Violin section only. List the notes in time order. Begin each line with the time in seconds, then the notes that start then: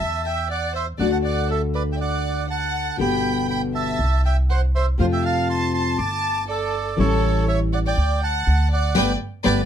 Already playing: E5
0.24 E5
0.50 D5
0.74 C5
0.98 D5
1.11 F#5
1.24 D5
1.49 A4
1.74 B4
1.92 E5
1.99 D5
2.48 F#5
2.99 G5
3.49 G5
3.75 E5
4.25 E5
4.49 C5
4.75 C5
4.99 C5
5.12 E5
5.24 F5
5.49 A5
5.75 A5
5.99 A5
6.48 A4
6.97 A4
7.47 C#5
7.73 D5
7.85 D5
8.20 F#5
8.71 D5
8.95 B4 D5 G5
9.44 B4 D5 G5